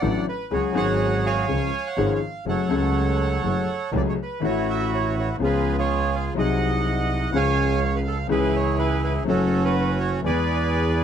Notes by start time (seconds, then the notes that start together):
Already playing: F#5
0.01 A1 A2 F#3 A3 D4 A4 D5
0.29 B4
0.51 C#2 C#3 F#3 G#3 C#4 F#4 G#4 C#5
0.72 G#1 G#2 F#3 G#3 C#4
0.77 G#4 C#5 F#5
1.26 C#5 F5 G#5
1.47 C#2 C#3 F3 G#3 C#4 G#4
1.87 F#5
1.97 G#1 G#2 F3 G#3 C#4 G#4
2.15 F5
2.46 F#1 F#2 F#3 A3 C#4 G#4 A4 C#5 F#5
2.68 C#2 C#3 F#3 A3 C#4 A4
3.43 F#1 F#2 F#3 A3 C#4 G#4
3.92 C#2 C#3 F#3 A3 C#4 G#4
3.97 D5
4.09 C#5
4.22 B4
4.40 A1 A2 E3 A3 C#4 E4
4.44 F#4 C#5
4.70 E5
4.94 C#5
5.19 C#5
5.38 C#2 C#3 F3 B3 C#4
5.42 F4 G#4 B4
5.78 F4 G#4 C#5
6.16 F5
6.34 C2 C3 F#3 C4 D#4 G#4
6.38 D#5 F#5
7.31 C#2 C#3 F3 G#3 C#4 G#4
7.36 C#5 F5 G#5
7.85 C#5
7.96 B4
8.07 A4
8.27 C#2 C#3 E3 G#3 C#4 G#4
8.31 E4 G#4 B4
8.56 C#5
8.79 B4
9.04 B4
9.24 F#1 F#2 F#3 A3 C#4
9.28 C#4 F#4 A4
9.65 F#4 B4
10.00 C#5
10.22 E2 E3 G#3 B3 G#4 D5
10.26 G#4 B4